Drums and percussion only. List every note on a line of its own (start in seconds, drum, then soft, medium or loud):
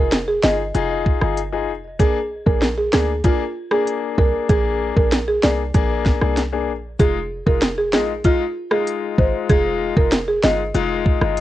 0.12 snare loud
0.12 closed hi-hat medium
0.43 snare loud
0.74 closed hi-hat medium
1.06 kick medium
1.21 cross-stick medium
1.37 closed hi-hat medium
2.00 kick loud
2.00 closed hi-hat medium
2.47 kick loud
2.62 snare loud
2.62 closed hi-hat medium
2.93 snare loud
3.24 kick loud
3.24 closed hi-hat medium
3.71 cross-stick loud
3.87 closed hi-hat medium
4.18 kick medium
4.49 kick loud
4.49 closed hi-hat medium
4.97 kick loud
5.12 snare loud
5.12 closed hi-hat medium
5.43 snare loud
5.74 kick loud
5.74 closed hi-hat medium
6.06 kick medium
6.06 snare medium
6.22 cross-stick medium
6.37 snare medium
6.37 closed hi-hat medium
6.99 kick loud
6.99 closed hi-hat medium
7.47 kick loud
7.62 snare loud
7.62 closed hi-hat medium
7.93 snare loud
8.24 kick loud
8.24 closed hi-hat medium
8.71 cross-stick loud
8.87 closed hi-hat medium
9.18 kick medium
9.49 kick loud
9.49 closed hi-hat medium
9.97 kick loud
10.12 snare loud
10.12 closed hi-hat medium
10.43 snare loud
10.74 closed hi-hat medium
11.06 kick medium
11.21 cross-stick medium
11.37 closed hi-hat medium